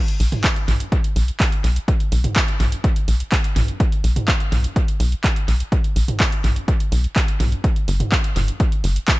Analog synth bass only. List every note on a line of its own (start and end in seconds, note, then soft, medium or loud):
0.20 0.35 B1 medium
0.68 0.83 B1 medium
1.16 1.31 B1 loud
1.64 1.79 B1 medium
2.12 2.27 B1 loud
2.60 2.75 B1 medium
3.08 3.23 B1 loud
3.56 3.71 B1 medium
4.04 4.19 B1 loud
4.52 4.67 B1 medium
5.00 5.15 B1 loud
5.48 5.63 B1 medium
5.96 6.11 B1 loud
6.44 6.59 B1 medium
6.92 7.07 B1 loud
7.40 7.55 B1 medium
7.88 8.03 G1 medium
8.36 8.51 G1 medium
8.84 8.99 G1 loud